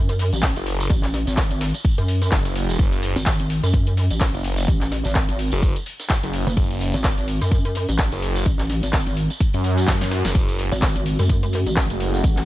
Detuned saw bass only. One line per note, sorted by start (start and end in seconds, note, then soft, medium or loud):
0.56 0.89 F#1 loud
2.32 2.78 F#1 loud
2.79 3.14 F#1 loud
4.34 4.67 F#1 loud
5.52 5.74 F#1 loud
6.23 6.45 F#1 loud
6.57 6.92 F#1 loud
8.12 8.44 F#1 loud
9.54 9.86 F#2 loud
9.88 10.23 F#2 medium
10.25 10.33 F#1 loud
10.35 10.70 F#1 loud
11.90 12.22 F#1 loud